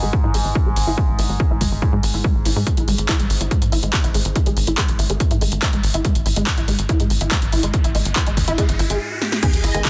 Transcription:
Already playing: G#2
0.03 G#1 G#3
0.13 kick
0.24 G#2 E4
0.34 G#1 G#3, open hi-hat
0.45 G#1
0.55 E4, kick
0.66 G#1 G#3
0.76 G#1, open hi-hat
0.87 G#1 E4
0.98 G#3, kick
1.08 G#1
1.19 G#1 E4, open hi-hat
1.29 G#1 G#3
1.40 kick
1.50 G#1 E4
1.61 G#1 G#3, kick, open hi-hat
1.72 G#1
1.82 E4, kick
1.93 G#2 G#3
2.03 G#1, open hi-hat
2.14 G#1 E4
2.24 G#3, kick
2.35 G#1
2.45 G#1 E4, open hi-hat
2.56 G#2 G#3
2.67 kick, closed hi-hat
2.77 G#1 E4, closed hi-hat
2.88 G#1 G#3, open hi-hat
2.98 G#1, closed hi-hat
3.09 E4, kick, clap, closed hi-hat
3.19 G#1 G#3, closed hi-hat
3.30 G#1, open hi-hat
3.41 G#1 E4, closed hi-hat
3.51 G#3, kick, closed hi-hat
3.62 G#2, closed hi-hat
3.72 G#1 E4, open hi-hat
3.83 G#1 G#3, closed hi-hat
3.93 kick, clap, closed hi-hat
4.04 G#1 E4, closed hi-hat
4.14 G#1 G#3, open hi-hat
4.25 G#1, closed hi-hat
4.36 E4, kick, closed hi-hat
4.46 G#1 G#3, closed hi-hat
4.57 G#1, open hi-hat
4.67 G#1 E4, closed hi-hat
4.78 G#3, kick, clap, closed hi-hat
4.88 G#1, closed hi-hat
4.99 G#1 E4, open hi-hat
5.10 G#1 G#3, closed hi-hat
5.20 kick, closed hi-hat
5.31 G#2 E4, closed hi-hat
5.41 G#1 G#3, open hi-hat
5.52 G#1, closed hi-hat
5.62 E4, kick, clap, closed hi-hat
5.73 G#1 G#3, closed hi-hat
5.83 G#1, open hi-hat
5.94 G#1 E4, closed hi-hat
6.05 G#3, kick, closed hi-hat, riser
6.15 G#1, closed hi-hat
6.26 G#1 E4, open hi-hat
6.36 G#1 G#3, closed hi-hat
6.47 kick, clap, closed hi-hat
6.57 G#1 E4, closed hi-hat
6.68 G#1 G#3, open hi-hat
6.79 G#1, closed hi-hat
6.89 E4, kick, closed hi-hat
7.00 G#2 G#3, closed hi-hat
7.10 G#1, open hi-hat
7.21 G#1 E4, closed hi-hat
7.31 G#3, kick, clap, closed hi-hat
7.42 G#1, closed hi-hat
7.52 G#1 E4, open hi-hat
7.63 G#1 G#3, closed hi-hat
7.74 kick, closed hi-hat
7.84 G#1 E4, closed hi-hat
7.95 G#1 G#3, open hi-hat
8.05 G#1, closed hi-hat
8.16 E4, kick, clap, closed hi-hat
8.27 G#1 G#3, closed hi-hat
8.37 G#1, kick, open hi-hat
8.48 G#1 E4, closed hi-hat
8.58 G#3, kick, closed hi-hat
8.69 G#1, closed hi-hat
8.79 G#1 E4, open hi-hat
8.90 G#1 G#3, closed hi-hat
9.22 snare
9.32 snare
9.43 D#3 G#3 B3 G#4, kick, closed hi-hat, crash, sub drop, shaker
9.53 G#1, closed hi-hat, shaker
9.64 G#1 E4 D#5, open hi-hat, shaker
9.74 G#1 D#3 G#3 B3 G#4, closed hi-hat, shaker
9.85 kick, clap, closed hi-hat, shaker

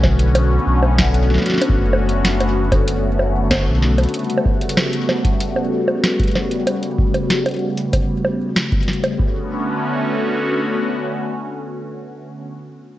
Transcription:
Already playing: B1 D3 A3 B3 C#4 F#4
0.04 kick, snare, high bongo
0.19 closed hi-hat
0.35 closed hi-hat, high bongo
0.67 B1
0.83 high bongo
0.98 kick, snare, closed hi-hat
1.14 closed hi-hat
1.30 snare
1.34 snare
1.38 snare
1.42 snare
1.46 snare, closed hi-hat
1.50 snare
1.54 snare
1.58 snare, closed hi-hat, high bongo
1.69 kick
1.77 F#1
1.93 high bongo
2.09 closed hi-hat
2.25 snare, closed hi-hat
2.40 closed hi-hat, high bongo
2.72 kick, closed hi-hat, high bongo
2.88 closed hi-hat
3.19 high bongo
3.51 kick, snare, closed hi-hat, high bongo
3.53 high bongo
3.56 high bongo
3.58 high bongo
3.60 high bongo
3.62 high bongo
3.65 B1, high bongo
3.83 snare
3.98 closed hi-hat, high bongo
4.04 closed hi-hat
4.09 closed hi-hat
4.14 C#3 G3 F#4, closed hi-hat
4.19 closed hi-hat
4.25 closed hi-hat
4.30 closed hi-hat
4.38 high bongo
4.46 kick
4.61 closed hi-hat
4.69 closed hi-hat
4.77 snare, high bongo
4.93 closed hi-hat
5.09 snare, high bongo
5.25 kick, closed hi-hat
5.40 closed hi-hat
5.56 high bongo
5.88 high bongo
6.04 snare, closed hi-hat
6.19 kick, closed hi-hat
6.23 closed hi-hat
6.27 closed hi-hat
6.31 snare, closed hi-hat, high bongo
6.51 closed hi-hat
6.67 closed hi-hat, high bongo
6.83 closed hi-hat
6.98 kick
7.14 closed hi-hat, high bongo
7.30 snare, closed hi-hat
7.46 closed hi-hat, high bongo
7.48 closed hi-hat
7.51 closed hi-hat
7.54 closed hi-hat
7.56 closed hi-hat
7.59 closed hi-hat
7.77 closed hi-hat
7.93 kick, closed hi-hat, high bongo
8.25 high bongo
8.56 snare, closed hi-hat
8.72 kick, closed hi-hat
8.83 closed hi-hat
8.88 snare
8.93 closed hi-hat
9.04 closed hi-hat, high bongo
9.19 D3 A3 B3 C#4 F#4, kick

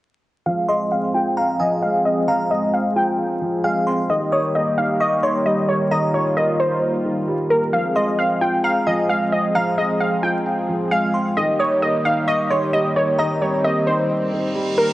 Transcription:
0.46 F3 G#3 C4 G#4 F5
0.68 G#3 D#5 C6
0.91 C4 F5
1.14 F4 G5
1.37 F5 A#5
1.60 F3 D#5 G#5
1.82 G#3 F5
2.05 C4 D#5
2.28 F3 F5 A#5
2.50 G#3 D#5
2.73 C4 F5
2.96 F4 G5
3.19 F5
3.42 F3
3.64 G#3 F5 G#5
3.87 C4 C6
4.09 D#3 G3 A#3 G4 D#5
4.32 G3 C#5 D#6
4.55 A#3 D#5
4.78 D#4 F5
5.00 D#5 C#6
5.23 D#3 C#5 C6
5.46 G3 D#5
5.69 A#3 C#5
5.91 D#3 F4 D#5 A#5
6.14 G3 C#5
6.37 A#3 D#5
6.59 D#4 C5
6.82 D#5
7.05 D#3
7.28 G3
7.50 A#3 A#4
7.73 F3 G#3 C4 G#4 F5
7.96 G#3 D#5 C6
8.19 C4 F5
8.41 F4 G5
8.64 F5 A#5
8.87 F3 D#5 G#5
9.09 G#3 F5
9.32 C4 D#5
9.55 F3 F5 A#5
9.78 G#3 D#5
10.00 C4 F5
10.23 F4 G5
10.46 F5
10.69 F3
10.91 G#3 F5 G#5
11.14 C4 C6
11.37 D#3 G3 A#3 G4 D#5
11.59 G3 C#5 D#6
11.82 A#3 D#5
12.05 D#4 F5
12.28 D#5 C#6
12.50 D#3 C#5 C6
12.73 G3 D#5
12.96 A#3 C#5
13.18 D#3 C4 D#5 A#5
13.41 G3 C#5
13.64 A#3 D#5
13.87 D#4 C5
14.10 D#5, reverse cymbal
14.32 D#3
14.55 G3
14.78 A#3 A#4

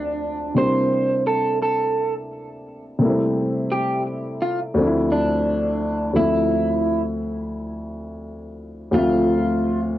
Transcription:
Already playing: D2 F3 A3 C4 D4
0.54 C3 G3 A#3 C5
0.58 D4 E4
1.27 A4
1.62 A4
2.99 C3 G3 A3
3.03 A#3 E4
3.10 C4
3.72 G4
4.42 F4
4.74 D2 F3 A3
4.79 C4 D4
4.86 E4
5.12 D4
6.13 D2 F3 A3 E4
6.17 C4 E4
8.91 D2 F3 A3 F4
8.96 C4 E5

